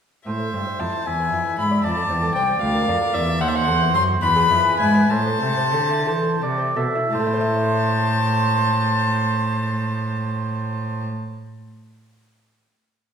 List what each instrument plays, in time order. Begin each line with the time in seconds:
0.26 cello A2, lute A2, oboe C5, violin E5
0.39 lute C5
0.53 cello G2, lute G2 C4
0.67 lute C5
0.79 cello F2, lute F2 E4, violin A5
0.94 lute C4
1.06 cello E2, lute E2, oboe E5, violin G#5
1.20 lute B4
1.32 cello F2, lute F2 E4
1.45 lute B4
1.58 cello G#2, lute G#2 E5, violin B5
1.71 lute D5
1.84 lute F2, cello F2, oboe D5, violin A5
1.96 lute A4
2.10 lute E2 C4, cello E2
2.22 lute A4
2.35 cello C2, lute C5, violin G5
2.49 lute C4
2.61 cello D2, lute D2, violin F5
2.75 lute A#4
2.87 cello F2, lute F2 D4
3.01 lute A#4
3.14 cello E2, lute E2 D5, violin E5
3.27 lute A#4
3.40 cello D#2, lute D#2, oboe C5, violin F#5
3.48 violin E5
3.54 lute C5, violin F#5
3.67 cello E2, lute E2 A3
3.81 lute C5
3.94 cello F#2, lute F#2 A4, violin C6
4.08 lute F#4
4.21 cello E2, lute E2, oboe B4, violin B5
4.36 lute G#4
4.50 cello F2, lute F2 E4
4.65 lute G#4
4.79 cello G#2, lute G#2 E5, violin G#5
4.95 lute B4
5.09 cello A2, lute A2, oboe C5, violin A5
5.26 lute C5
5.42 cello C3, lute C3 A3
5.58 lute C5
5.73 lute D3 A4, cello D3
5.90 lute E4
6.07 cello E3, lute E3 A4, oboe C5
6.24 lute C5
6.41 cello C3, lute C3 A3, oboe D5
6.58 lute C5
6.76 lute B2 A4, cello B2, oboe E5
6.95 lute E4
7.12 lute A2, cello A2, oboe C5, violin A5
7.20 lute A3
7.27 lute E4
7.33 lute C5
7.41 lute E5